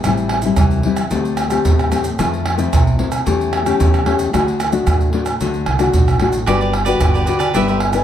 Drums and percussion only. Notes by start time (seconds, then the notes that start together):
0.04 pandeiro, tamborim, maracas, surdo
0.17 pandeiro, maracas
0.29 pandeiro, tamborim
0.42 pandeiro, maracas
0.56 pandeiro, tamborim, maracas, surdo
0.71 pandeiro, maracas
0.83 pandeiro
0.96 pandeiro, tamborim, maracas
1.11 pandeiro, maracas, surdo
1.25 pandeiro, maracas
1.37 pandeiro, tamborim, maracas
1.50 pandeiro, tamborim, maracas
1.65 pandeiro, maracas, surdo
1.79 pandeiro, tamborim, maracas
1.92 pandeiro, tamborim, maracas
2.04 pandeiro, maracas
2.19 pandeiro, tamborim, maracas, surdo
2.34 pandeiro, maracas
2.46 pandeiro, tamborim
2.59 pandeiro, maracas
2.73 pandeiro, tamborim, maracas, surdo
2.87 pandeiro, maracas
2.99 pandeiro
3.12 pandeiro, tamborim, maracas
3.27 pandeiro, maracas, surdo
3.41 pandeiro, maracas
3.53 pandeiro, tamborim
3.66 pandeiro, tamborim, maracas
3.80 pandeiro, maracas, surdo
3.94 pandeiro, tamborim, maracas
4.06 pandeiro, tamborim
4.19 pandeiro, maracas
4.34 pandeiro, tamborim, maracas, surdo
4.48 pandeiro, maracas
4.60 pandeiro, tamborim, maracas
4.72 pandeiro, maracas
4.87 pandeiro, tamborim, maracas, surdo
5.01 pandeiro, maracas
5.13 pandeiro
5.26 pandeiro, tamborim, maracas
5.41 pandeiro, maracas, surdo
5.54 pandeiro, maracas
5.66 pandeiro, tamborim
5.79 pandeiro, tamborim, maracas
5.93 pandeiro, maracas, surdo
6.08 pandeiro, tamborim, maracas
6.20 pandeiro, tamborim
6.33 pandeiro, maracas
6.47 pandeiro, tamborim, maracas, surdo
6.61 pandeiro, maracas
6.73 pandeiro, tamborim
6.86 pandeiro, maracas
7.00 pandeiro, tamborim, maracas, surdo
7.15 pandeiro, maracas
7.27 pandeiro, maracas
7.40 pandeiro, tamborim, maracas
7.54 pandeiro, maracas, surdo
7.68 pandeiro, maracas
7.80 pandeiro, tamborim
7.93 pandeiro, tamborim, maracas